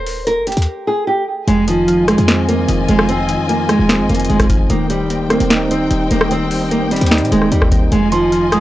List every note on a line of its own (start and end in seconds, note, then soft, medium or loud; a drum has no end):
0.00 0.38 D#1 loud
0.00 0.25 C5 loud
0.07 open hi-hat medium
0.27 0.43 A#4 medium
0.27 closed hi-hat medium
0.37 0.48 G1 loud
0.47 0.57 D#1 loud
0.47 0.85 G4 medium
0.47 closed hi-hat medium
0.52 closed hi-hat medium
0.57 0.67 D#2 loud
0.57 closed hi-hat medium
0.62 closed hi-hat medium
0.87 1.04 G#4 medium
1.07 1.24 G4 medium
1.47 2.15 F1 loud
1.47 2.47 F2 medium
1.47 1.64 G#3 loud
1.47 4.67 F4 medium
1.47 4.67 D#5 medium
1.47 4.67 G#5 loud
1.47 closed hi-hat medium
1.68 2.67 D#3 medium
1.68 2.06 F3 loud
1.68 closed hi-hat medium
1.88 2.88 F3 loud
1.88 closed hi-hat medium
2.08 2.46 G#3 medium
2.08 3.09 G#3 medium
2.08 cross-stick medium
2.08 closed hi-hat medium
2.18 2.66 F2 loud
2.18 closed hi-hat medium
2.28 3.29 C4 loud
2.28 snare loud
2.28 closed hi-hat medium
2.48 3.08 F2 medium
2.48 2.86 A#3 medium
2.48 closed hi-hat medium
2.68 2.88 F1 loud
2.68 3.28 D#3 medium
2.68 closed hi-hat medium
2.88 3.37 F1 loud
2.88 3.48 F3 medium
2.88 3.05 G#3 medium
2.88 closed hi-hat medium
2.99 cross-stick loud
3.09 4.08 F2 medium
3.09 3.47 C4 medium
3.09 closed hi-hat medium
3.29 4.28 D#3 medium
3.29 closed hi-hat medium
3.49 4.49 F3 medium
3.49 3.65 A#3 medium
3.49 closed hi-hat medium
3.69 4.07 G#3 medium
3.69 4.70 G#3 medium
3.69 cross-stick medium
3.69 closed hi-hat medium
3.79 4.01 D#1 loud
3.89 4.70 C4 loud
3.89 snare loud
3.89 closed hi-hat medium
3.99 4.09 G#1 loud
4.09 4.29 F1 loud
4.09 4.70 F2 medium
4.09 4.26 A#3 medium
4.09 closed hi-hat soft
4.14 closed hi-hat medium
4.20 closed hi-hat medium
4.25 closed hi-hat medium
4.29 4.68 F1 loud
4.29 4.68 D#3 medium
4.29 4.46 G#3 medium
4.29 closed hi-hat medium
4.40 kick medium
4.40 cross-stick medium
4.40 closed hi-hat medium
4.50 4.70 F3 medium
4.50 kick loud
4.50 closed hi-hat medium
4.70 5.37 D#1 loud
4.70 5.69 D#3 loud
4.70 4.86 A#3 loud
4.70 7.89 D#4 medium
4.70 7.89 C5 medium
4.70 7.89 G5 medium
4.70 closed hi-hat medium
4.90 5.89 G3 medium
4.90 5.28 G3 medium
4.90 closed hi-hat medium
5.10 6.10 A#3 medium
5.10 closed hi-hat medium
5.30 5.68 A#3 medium
5.30 6.31 C4 medium
5.30 cross-stick medium
5.30 closed hi-hat medium
5.40 5.89 D#1 loud
5.40 closed hi-hat medium
5.50 6.51 D#4 loud
5.50 snare loud
5.50 closed hi-hat medium
5.71 6.30 D#3 medium
5.71 6.09 C4 medium
5.71 closed hi-hat medium
5.91 6.10 D#1 loud
5.91 6.50 G3 medium
5.91 closed hi-hat medium
6.11 6.83 D#1 loud
6.11 6.70 A#3 medium
6.11 6.27 A#3 medium
6.11 closed hi-hat medium
6.21 cross-stick loud
6.31 7.30 D#3 loud
6.31 6.69 C4 loud
6.31 closed hi-hat medium
6.51 7.51 G3 medium
6.51 open hi-hat medium
6.71 6.87 A#3 medium
6.71 7.71 A#3 medium
6.71 closed hi-hat medium
6.81 6.93 G1 loud
6.91 7.01 D#1 loud
6.91 7.29 G3 medium
6.91 7.92 C4 medium
6.91 closed hi-hat medium
6.96 closed hi-hat medium
7.01 7.23 D#2 loud
7.01 closed hi-hat medium
7.06 closed hi-hat medium
7.11 7.92 D#4 loud
7.11 snare loud
7.11 closed hi-hat medium
7.18 7.31 A#2 loud
7.18 closed hi-hat medium
7.25 closed hi-hat medium
7.31 7.51 D#1 loud
7.31 7.92 D#3 medium
7.31 7.48 G#3 medium
7.31 closed hi-hat medium
7.42 cross-stick medium
7.52 7.90 D#2 loud
7.52 7.68 G3 medium
7.52 7.92 G3 medium
7.52 closed hi-hat medium
7.62 kick loud
7.62 cross-stick medium
7.72 7.92 A#3 medium
7.72 kick loud
7.72 closed hi-hat medium
7.92 8.60 F1 loud
7.92 8.60 F2 loud
7.92 8.08 G#3 loud
7.92 8.60 F4 medium
7.92 8.60 D#5 medium
7.92 8.60 G#5 medium
7.92 closed hi-hat medium
8.12 8.60 D#3 medium
8.12 8.50 F3 loud
8.12 8.50 C6 medium
8.12 closed hi-hat medium
8.32 8.60 F3 loud
8.32 closed hi-hat medium
8.52 8.60 G#3 medium
8.52 8.60 D#6 medium
8.52 cross-stick medium
8.52 closed hi-hat medium